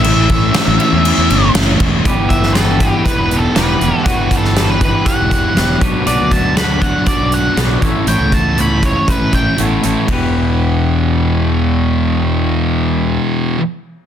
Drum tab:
CC |x-x-x-x-x-x-x-x-|----------------|----------------|----------------|
RD |----------------|----------------|----------------|----------------|
HH |----------------|x-x-x-x-x-x-x-x-|x-x-x-x-x-x-x-x-|x-x-x-x-x-x-x-x-|
SD |----o-------o---|---oo-------o---|---oo-------o---|----o-------o---|
BD |--o-----------o-|o-o---o-o-------|o-o---o-o-o---o-|--o---o-o-----o-|

CC |----------------|----------------|----------------|
RD |----------------|x---------------|----------------|
HH |x-x-x-x-x-x-x-x-|----------------|----------------|
SD |----------------|----------------|----------------|
BD |--o---o-o-o-----|o---------------|----------------|